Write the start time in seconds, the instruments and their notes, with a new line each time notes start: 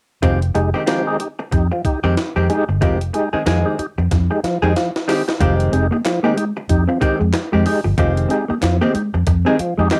0.22 fingered electric bass F1, hollow-body jazz guitar D#3 G#3 C4 G4, tonewheel organ F3, kick, closed hi-hat
0.42 closed hi-hat
0.54 fingered electric bass F1, tonewheel organ G#3 D#4 G4, muted hollow-body jazz guitar stroke, closed hi-hat
0.74 hollow-body jazz guitar D#3 G#3 C4 G4, tonewheel organ D#4 G4
0.86 hollow-body jazz guitar D#3 G#3 C4 G4, tonewheel organ F3, snare, closed hi-hat
1.07 tonewheel organ G#3 D#4 G4
1.19 tonewheel organ D#4 G4, muted hollow-body jazz guitar stroke, closed hi-hat
1.39 muted hollow-body jazz guitar stroke
1.51 fingered electric bass F2, tonewheel organ D#4 G4, muted hollow-body jazz guitar stroke, kick, closed hi-hat
1.72 tonewheel organ F3, muted hollow-body jazz guitar stroke
1.85 tonewheel organ D#4 G4, muted fingered electric bass stroke, kick, closed hi-hat
2.04 fingered electric bass F2, hollow-body jazz guitar D#3 G#3 C4 G4
2.17 muted hollow-body jazz guitar stroke, snare, closed hi-hat
2.36 fingered electric bass F2, hollow-body jazz guitar D#3 G#3 C4 G4
2.50 tonewheel organ G#3 D#4 G4, muted hollow-body jazz guitar stroke, closed hi-hat
2.69 fingered electric bass G1, muted hollow-body jazz guitar stroke
2.81 fingered electric bass F1, hollow-body jazz guitar D#3 G#3 C4 G4, tonewheel organ F3, kick, closed hi-hat
3.01 closed hi-hat
3.13 tonewheel organ G#3 D#4 G4, muted hollow-body jazz guitar stroke, closed hi-hat
3.33 hollow-body jazz guitar D#3 G#3 C4 G#4, tonewheel organ D#4 G4, muted fingered electric bass stroke
3.46 fingered electric bass F2, hollow-body jazz guitar D#3 G#3 C4 G#4, tonewheel organ F3, snare, closed hi-hat
3.65 tonewheel organ G#3 D#4 G4
3.78 tonewheel organ D#4 G4, muted hollow-body jazz guitar stroke, muted fingered electric bass stroke, closed hi-hat
3.98 fingered electric bass F2, muted hollow-body jazz guitar stroke
4.11 fingered electric bass F2, muted hollow-body jazz guitar stroke, kick, snare, closed hi-hat
4.30 tonewheel organ G#3 D#4 G4, muted hollow-body jazz guitar stroke
4.44 tonewheel organ F3, muted fingered electric bass stroke, snare, closed hi-hat
4.62 fingered electric bass F2, hollow-body jazz guitar D#3 G#3 C4 G#4, tonewheel organ G#3 D#4 G4
4.75 tonewheel organ F3, muted hollow-body jazz guitar stroke, snare, closed hi-hat
4.96 snare
5.08 hollow-body jazz guitar D#3 G#3 C4 G4, tonewheel organ G#3 D#4 G4, snare, open hi-hat
5.28 tonewheel organ D#4 G4, muted hollow-body jazz guitar stroke, snare
5.40 fingered electric bass F1, hollow-body jazz guitar D#3 G#3 C4 G4, tonewheel organ F3, kick, closed hi-hat
5.59 muted clean electric guitar stroke, closed hi-hat
5.72 fingered electric bass F1, tonewheel organ G#3 D#4 G4, clean electric guitar C4, closed hi-hat
5.91 clean electric guitar A#3, tonewheel organ D#4 G4, muted hollow-body jazz guitar stroke
6.04 tonewheel organ F3, muted clean electric guitar stroke, muted hollow-body jazz guitar stroke, snare, clap, closed hi-hat
6.23 hollow-body jazz guitar D#3 G#3 C4 G4, tonewheel organ G#3 D#4 G4, clean electric guitar A#3
6.36 clean electric guitar G#3, tonewheel organ D#4 G4, muted hollow-body jazz guitar stroke, closed hi-hat
6.57 muted hollow-body jazz guitar stroke
6.69 fingered electric bass F2, tonewheel organ D#4 G4, kick, closed hi-hat
6.88 tonewheel organ F3, clean electric guitar C4, muted hollow-body jazz guitar stroke
7.00 hollow-body jazz guitar D#3 G#3 C4 G4, tonewheel organ D#4 G4, muted clean electric guitar stroke, muted fingered electric bass stroke, kick, closed hi-hat
7.19 fingered electric bass F2, clean electric guitar G#3, muted hollow-body jazz guitar stroke
7.33 muted hollow-body jazz guitar stroke, snare, clap, closed hi-hat
7.52 fingered electric bass F2, hollow-body jazz guitar D#3 G#3 C4 G4, clean electric guitar G#3
7.65 tonewheel organ G#3 D#4 G4, muted clean electric guitar stroke, open hi-hat
7.84 fingered electric bass G1, clean electric guitar F3, muted hollow-body jazz guitar stroke
7.98 fingered electric bass F1, hollow-body jazz guitar D#3 G#3 C4 G4, tonewheel organ F3, kick, closed hi-hat
8.16 muted clean electric guitar stroke, closed hi-hat
8.29 tonewheel organ G#3 D#4 G4, clean electric guitar C4, closed hi-hat
8.48 clean electric guitar A#3, tonewheel organ D#4 G4, muted hollow-body jazz guitar stroke, muted fingered electric bass stroke
8.61 fingered electric bass F2, tonewheel organ F3, muted clean electric guitar stroke, muted hollow-body jazz guitar stroke, snare, clap, closed hi-hat
8.81 hollow-body jazz guitar D#3 G#3 C4 G4, tonewheel organ G#3 D#4 G4, clean electric guitar A#3
8.93 clean electric guitar G#3, tonewheel organ D#4 G4, muted hollow-body jazz guitar stroke, muted fingered electric bass stroke, closed hi-hat
9.14 fingered electric bass F2, muted hollow-body jazz guitar stroke
9.27 fingered electric bass F2, muted hollow-body jazz guitar stroke, kick, closed hi-hat
9.45 hollow-body jazz guitar D#3 G#3 C4 G#4, tonewheel organ G#3 D#4 G4, clean electric guitar C4
9.58 tonewheel organ F3, muted clean electric guitar stroke, muted hollow-body jazz guitar stroke, muted fingered electric bass stroke, closed hi-hat
9.78 fingered electric bass F2, clean electric guitar G#3, tonewheel organ G#3 D#4 G4, muted hollow-body jazz guitar stroke
9.91 hollow-body jazz guitar D#3 G#3 C4 G4, snare, clap, closed hi-hat